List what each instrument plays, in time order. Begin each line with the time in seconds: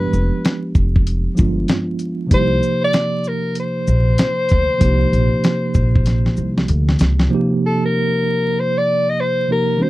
Already playing: tine electric piano F3 G#3 B3 D4 G4, soprano saxophone B4
0.13 upright bass F1, shaker
0.45 snare, closed hi-hat
0.75 upright bass F1, kick, shaker
0.96 kick
1.07 closed hi-hat
1.35 upright bass G1, tine electric piano F3 G#3 B3 D4 F4, kick, shaker
1.68 snare, closed hi-hat
1.99 closed hi-hat, shaker
2.27 tine electric piano C3 F3 A#3
2.31 upright bass C2, tine electric piano D#4 G4, soprano saxophone C5, kick, closed hi-hat
2.63 shaker
2.84 soprano saxophone D5
2.93 snare, closed hi-hat
3.24 soprano saxophone A#4, shaker
3.55 closed hi-hat
3.60 soprano saxophone C5
3.87 upright bass A#1, shaker
4.18 snare, closed hi-hat
4.49 upright bass D2, kick, closed hi-hat, shaker
4.78 upright bass C2, tine electric piano C3 F3 A#3, kick, closed hi-hat
4.82 tine electric piano D#4 G4
5.13 upright bass A#1, closed hi-hat, shaker
5.44 snare, closed hi-hat
5.74 upright bass A#1, kick, shaker
5.95 kick
6.06 snare, closed hi-hat
6.26 snare
6.37 upright bass C2, shaker
6.58 snare
6.68 upright bass D2, closed hi-hat
6.89 snare
6.99 upright bass C#2, snare, closed hi-hat, shaker
7.20 snare
7.29 tine electric piano C3 F3 A#3 D#4
7.34 tine electric piano G4
7.66 soprano saxophone A4
7.85 soprano saxophone A#4
8.59 soprano saxophone C5
8.78 soprano saxophone D5
9.09 soprano saxophone D#5
9.20 soprano saxophone C5
9.48 tine electric piano C3 F3 A#3 D#4 G4, soprano saxophone A#4
9.77 tine electric piano E3 G#3 C4
9.81 tine electric piano D4 F#4, soprano saxophone C5